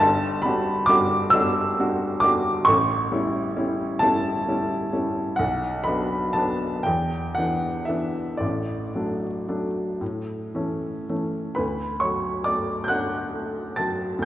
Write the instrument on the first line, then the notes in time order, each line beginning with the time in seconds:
upright piano
Already playing: G2
0.00 G1 A5
0.42 G3 D4 F#4 B5
0.86 G3 D4 F#4 D6
1.30 G3 D4 E6
1.34 F#4
1.80 G3 D4 F#4
2.20 G3 D4 D6
2.24 F#4
2.65 A1 C#6
3.12 G3 C#4 E4
3.57 G3 C#4 E4
3.99 G3 C#4 E4 A5
4.48 G3 C#4 E4
4.93 G3 C#4 E4
5.36 B1 F#5
5.84 F#3 B3 D4 B5
6.33 F#3 B3 D4 A5
6.83 E2 G5
7.35 E3 B3 D4 F#5
7.85 E3 B3 E5
7.89 D4
8.37 A1 A2 D5
8.95 F#3 A3 D4
9.48 F#3 A3 D4
10.01 A2
10.55 E3 A3 C#4
11.09 E3 A3 C#4
11.55 D2 B4 B5
12.00 F#3 C#5 C#6
12.44 A3 D5 D6
12.84 G6
12.88 D4 F#5 F#6
13.34 A3
13.76 F#3 A5 A6
14.19 D2